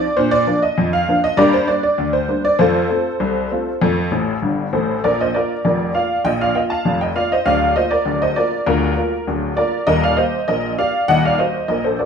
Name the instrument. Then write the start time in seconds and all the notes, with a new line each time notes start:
honky-tonk piano
Already playing: D5
0.17 A#2 D4 C5
0.31 D5
0.47 F3 A#3 D4
0.63 D#5
0.78 F2
0.93 F5
1.08 F3 A#3 D4
1.24 D#5
1.37 G2 A#3 G4 A#4 D5
1.54 C5
1.68 G3 A#3 D4 D5
1.83 D5
1.98 D2
2.13 C5
2.28 G3 A#3 D4
2.45 D5
2.59 F2 A3 F4 A4 C5
2.90 A3 C4 F4
3.20 C2
3.52 A3 C4 F4
3.82 F2 A3
4.11 A1 A2
4.42 G1 G2
4.73 A1 A2 A4 C5
5.04 A#1 A#2 A#4 D5
5.21 C5 D#5
5.34 A#3 F4 A#4 D5
5.65 F1 F2 A#4 D5
5.95 A#3 F4 D5 F5
6.25 A#1 A#2 D#5 G5
6.41 D5 F5
6.55 A#3 F4 D#5 G5
6.70 F5 A5
6.85 F1 F2
7.01 D#5 G5
7.16 A#3 F4 D5 F5
7.32 C5 D#5
7.46 D1 D2 D5 F5
7.76 A#3 F4 C5 D#5
7.91 A#4 D5
8.05 D1 D2
8.22 C5 D#5
8.36 A#3 F4 A#4 D5
8.67 D1 D2 F4 A#4
8.97 A#3 F4
9.27 D1 D2
9.57 A#3 F4 A#4 D5
9.87 D#1 D#2 A#4 D#5
10.04 D5 F5
10.17 A#3 G4 C5 D#5
10.48 A#1 A#2 A#4 D#5
10.78 A#3 G4 D5 F5
11.08 D#1 D#2 D#5 F#5
11.25 D5 F5
11.39 A#3 F#4 C5 D#5
11.68 A#1 A#2 A#4 D#5
11.84 A4 C5
11.99 A#3 F#4 A#4 D5